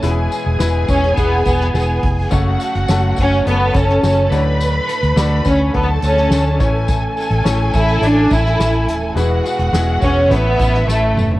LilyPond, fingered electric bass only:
\new Staff \with { instrumentName = "Fingered electric bass" } { \clef bass \time 4/4 \key a \major \tempo 4 = 105 e,,8 r16 e,,16 e,,8 e,,8 e,,8 e,,8 e,,8 f,,8 | fis,,8 r16 fis,,16 fis,,8 fis,,8 fis,,8 fis,,8 fis,,8 d,8~ | d,8 r16 d,16 d,8 d,8 d,8 d,8 d,8 a,,8~ | a,,8 r16 a,,16 a,,8 a,,8 a,,8 a,,8 a,,8 dis,,8 |
e,,8 r16 e,,16 e,,8 e,,8 a,,8 a,,8 a,,8 f,,8 | }